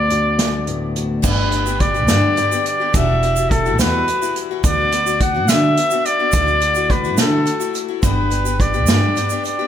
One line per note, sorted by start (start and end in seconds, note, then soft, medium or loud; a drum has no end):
0.00 1.21 D2 medium
0.00 1.25 D2 medium
0.00 0.67 B3 soft
0.00 0.10 F#4 medium
0.00 0.97 D5 medium
0.10 2.94 D3 medium
0.10 0.96 F#4 medium
0.10 closed hi-hat medium
0.39 snare medium
0.39 closed hi-hat medium
0.67 1.24 A2 medium
0.67 1.21 B3 soft
0.67 closed hi-hat medium
0.96 1.21 F#4 medium
0.96 closed hi-hat medium
1.22 2.09 G1 medium
1.22 1.52 G2 medium
1.22 1.52 D3 medium
1.22 1.50 G3 medium
1.22 1.51 B3 medium
1.22 1.52 D4 medium
1.22 1.52 G4 medium
1.22 1.82 B4 medium
1.22 kick loud
1.22 crash loud
1.22 shaker medium
1.51 1.66 G3 medium
1.51 1.66 B3 medium
1.51 1.66 D4 medium
1.51 1.65 G4 medium
1.51 closed hi-hat medium
1.66 1.95 G3 soft
1.66 1.95 B3 soft
1.66 1.94 D4 soft
1.66 1.93 G4 soft
1.66 shaker medium
1.80 2.66 D5 loud
1.80 kick medium
1.80 closed hi-hat medium
1.94 2.08 G3 soft
1.94 2.08 B3 soft
1.94 2.08 D4 soft
1.94 2.08 G4 soft
1.94 shaker soft
2.08 2.37 G2 medium
2.08 2.35 G2 medium
2.08 2.37 D3 medium
2.08 2.35 G3 medium
2.08 2.36 B3 medium
2.08 2.37 D4 medium
2.08 2.37 G4 medium
2.08 snare loud
2.08 closed hi-hat medium
2.08 shaker medium
2.36 2.51 G3 medium
2.36 2.52 B3 medium
2.36 2.51 D4 medium
2.36 2.50 G4 medium
2.36 closed hi-hat soft
2.36 shaker soft
2.51 2.81 G3 soft
2.51 2.80 B3 soft
2.51 2.80 D4 medium
2.51 2.79 G4 soft
2.51 shaker medium
2.66 2.98 D5 medium
2.66 closed hi-hat medium
2.66 shaker soft
2.80 2.93 G3 soft
2.80 2.94 B3 soft
2.80 2.94 D4 soft
2.80 2.94 G4 soft
2.94 3.80 E1 medium
2.94 3.22 E2 medium
2.94 3.23 B2 medium
2.94 3.21 E3 medium
2.94 3.22 G3 medium
2.94 3.23 E4 medium
2.94 3.23 F#4 medium
2.94 3.52 E5 loud
2.94 kick loud
2.94 closed hi-hat medium
2.94 shaker medium
3.23 3.37 E3 medium
3.23 3.37 G3 medium
3.23 3.37 E4 medium
3.23 3.36 F#4 medium
3.23 closed hi-hat soft
3.36 3.66 E3 soft
3.36 3.65 G3 soft
3.36 3.65 E4 soft
3.36 3.64 F#4 soft
3.36 shaker medium
3.51 3.79 A4 medium
3.51 kick medium
3.51 closed hi-hat medium
3.66 3.79 E3 soft
3.66 3.79 G3 soft
3.66 3.80 E4 soft
3.66 3.79 F#4 soft
3.66 shaker soft
3.79 4.08 E2 medium
3.79 4.05 E2 medium
3.79 4.08 B2 medium
3.79 4.07 E3 medium
3.79 4.07 G3 medium
3.79 4.08 E4 medium
3.79 4.08 F#4 medium
3.79 4.39 B4 loud
3.79 snare loud
3.79 closed hi-hat medium
3.79 shaker medium
4.08 4.22 E3 medium
4.08 4.22 G3 medium
4.08 4.21 E4 medium
4.08 4.20 F#4 medium
4.08 closed hi-hat medium
4.08 shaker soft
4.22 4.51 E3 soft
4.22 4.51 G3 medium
4.22 4.50 E4 soft
4.22 4.50 F#4 soft
4.22 shaker medium
4.36 closed hi-hat medium
4.36 shaker soft
4.51 4.63 E3 soft
4.51 4.64 G3 soft
4.51 4.64 E4 soft
4.51 4.64 F#4 soft
4.64 5.48 D2 loud
4.64 4.90 D3 medium
4.64 4.91 B3 medium
4.64 4.92 D4 medium
4.64 4.93 F#4 medium
4.64 5.18 D5 loud
4.64 kick loud
4.64 closed hi-hat medium
4.64 shaker loud
4.92 5.06 D3 medium
4.92 5.07 B3 medium
4.92 5.06 D4 medium
4.92 5.05 F#4 medium
4.92 closed hi-hat medium
5.06 5.35 B3 soft
5.06 5.34 D4 soft
5.06 5.33 F#4 soft
5.06 shaker medium
5.20 5.50 F#5 medium
5.20 kick medium
5.20 closed hi-hat medium
5.34 5.48 B3 soft
5.34 5.49 D4 soft
5.34 5.49 F#4 soft
5.48 5.77 D3 medium
5.48 5.74 D3 medium
5.48 5.77 B3 medium
5.48 5.78 D4 medium
5.48 5.78 F#4 medium
5.48 6.07 E5 loud
5.48 snare loud
5.48 closed hi-hat medium
5.48 shaker loud
5.77 5.92 D3 medium
5.77 5.92 B3 medium
5.77 5.92 D4 medium
5.77 5.90 F#4 medium
5.77 closed hi-hat medium
5.77 shaker soft
5.91 6.20 B3 soft
5.91 6.19 D4 soft
5.91 6.18 F#4 soft
5.91 shaker medium
6.05 6.92 D5 loud
6.05 closed hi-hat medium
6.05 shaker soft
6.19 6.33 B3 soft
6.19 6.33 D4 soft
6.19 6.33 F#4 soft
6.32 7.19 D2 medium
6.32 6.59 D3 medium
6.32 6.61 A3 medium
6.32 6.61 E4 medium
6.32 6.62 F#4 medium
6.32 kick loud
6.32 closed hi-hat medium
6.32 shaker loud
6.47 shaker soft
6.60 6.75 D3 medium
6.60 6.76 A3 medium
6.60 6.76 E4 medium
6.60 6.75 F#4 medium
6.60 closed hi-hat medium
6.75 7.05 A3 soft
6.75 7.04 E4 soft
6.75 7.03 F#4 soft
6.75 shaker medium
6.90 7.19 B4 medium
6.90 kick medium
6.90 closed hi-hat medium
7.04 7.18 A3 soft
7.04 7.18 E4 soft
7.04 7.18 F#4 medium
7.04 shaker soft
7.18 7.44 D3 medium
7.18 7.45 A3 medium
7.18 7.46 E4 medium
7.18 7.46 F#4 medium
7.18 7.79 A4 medium
7.18 snare medium
7.18 closed hi-hat medium
7.18 shaker medium
7.46 7.60 D3 medium
7.46 7.60 A3 medium
7.46 7.59 E4 medium
7.46 7.59 F#4 medium
7.46 closed hi-hat medium
7.60 7.89 A3 soft
7.60 7.88 E4 soft
7.60 7.87 F#4 medium
7.60 shaker medium
7.74 closed hi-hat medium
7.74 shaker soft
7.88 8.03 A3 soft
7.88 8.03 E4 soft
7.88 8.03 F#4 medium
8.03 8.88 G1 medium
8.03 8.31 G2 medium
8.03 8.32 D3 medium
8.03 8.29 G3 medium
8.03 8.30 B3 medium
8.03 8.31 D4 medium
8.03 8.31 G4 medium
8.03 8.62 B4 medium
8.03 kick loud
8.03 closed hi-hat medium
8.03 shaker medium
8.30 8.45 G3 medium
8.30 8.46 B3 medium
8.30 8.45 D4 soft
8.30 8.44 G4 medium
8.30 closed hi-hat medium
8.45 8.74 G3 soft
8.45 8.74 B3 soft
8.45 8.73 D4 soft
8.45 8.73 G4 soft
8.45 shaker medium
8.60 9.45 D5 medium
8.60 kick medium
8.60 closed hi-hat medium
8.74 8.87 G3 soft
8.74 8.87 B3 soft
8.74 8.87 D4 soft
8.74 8.88 G4 soft
8.74 shaker soft
8.87 9.16 G2 medium
8.87 9.13 G2 medium
8.87 9.17 D3 medium
8.87 9.15 G3 medium
8.87 9.16 B3 medium
8.87 9.16 D4 medium
8.87 9.17 G4 medium
8.87 snare loud
8.87 closed hi-hat medium
8.87 shaker loud
9.16 9.31 G3 medium
9.16 9.31 B3 medium
9.16 9.31 D4 medium
9.16 9.30 G4 medium
9.16 closed hi-hat medium
9.16 shaker soft
9.30 9.60 G3 soft
9.30 9.59 B3 soft
9.30 9.58 D4 soft
9.30 9.58 G4 medium
9.30 shaker medium
9.44 9.67 D5 medium
9.44 closed hi-hat medium
9.44 shaker soft
9.59 9.67 G3 soft
9.59 9.67 B3 soft
9.59 9.67 D4 soft
9.59 9.67 G4 soft